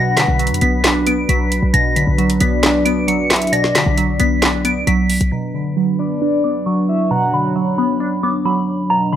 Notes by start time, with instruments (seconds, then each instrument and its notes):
Already playing: 808-style bass B1, synth pluck B2 F#3 B3 D4, analog synth pad F#3 D4 B4, soft synth lead F#5, synth bell A#6
0.17 synth pluck D3, synth bell B6, snare, clap, closed hi-hat
0.28 808-style bass B1
0.39 synth pluck F#3, closed hi-hat
0.47 808-style bass F#2, closed hi-hat
0.54 closed hi-hat
0.61 808-style bass B1, synth pluck B3, synth bell B6, closed hi-hat
0.84 synth pluck D4, snare, clap, closed hi-hat
1.07 synth pluck B3, synth bell D7, closed hi-hat
1.29 808-style bass B1, synth pluck F#3, synth bell B6, closed hi-hat
1.52 closed hi-hat
1.63 808-style bass B1
1.74 808-style bass B1, synth pluck B2, analog synth pad F#3 D4, synth bell A#6, closed hi-hat
1.96 synth pluck D3, synth bell B6, closed hi-hat
2.07 808-style bass B1
2.18 synth pluck F#3, closed hi-hat
2.30 closed hi-hat
2.40 808-style bass B1, synth pluck B3, soft synth lead D5, synth bell B6, closed hi-hat
2.63 synth pluck D4, snare, clap, closed hi-hat
2.85 synth pluck B3, synth bell D7, closed hi-hat
3.08 synth pluck F#3, synth bell C#7, closed hi-hat
3.30 soft synth lead E5, snare, clap, closed hi-hat
3.36 closed hi-hat
3.42 closed hi-hat
3.47 closed hi-hat
3.52 synth pluck B2, analog synth pad D5, soft synth lead D5, synth bell A#6, closed hi-hat
3.64 snare
3.75 synth pluck D3, synth bell B6, snare, clap, closed hi-hat
3.86 808-style bass B1
3.98 synth pluck F#3, closed hi-hat
4.20 808-style bass B1, synth pluck B3, synth bell B6, closed hi-hat
4.42 synth pluck D4, snare, clap, closed hi-hat
4.65 synth pluck B3, synth bell D7, closed hi-hat
4.87 808-style bass B1, synth pluck F#3, synth bell B6, closed hi-hat
5.10 closed hi-hat, open hi-hat
5.21 808-style bass B1, closed hi-hat
5.32 synth pluck B2, analog synth pad F#3 D4 B4, synth bell A#5
5.54 synth pluck D3, synth bell B5
5.77 synth pluck F#3
5.99 synth pluck B3, soft synth lead D5, synth bell B5
6.22 synth pluck D4
6.44 synth pluck B3, synth bell D6
6.66 synth pluck F#3, synth bell C#6
6.89 soft synth lead E5
7.11 synth pluck B2, analog synth pad C#5, soft synth lead F#5, synth bell A#5
7.33 synth pluck D3, synth bell B5
7.56 synth pluck F#3
7.78 synth pluck B3, synth bell B5
8.00 synth pluck D4
8.23 synth pluck B3, synth bell D6
8.45 synth pluck F#3, synth bell B5
8.90 synth pluck B2, analog synth pad B4, synth bell A#5
9.12 synth pluck D3, synth bell B5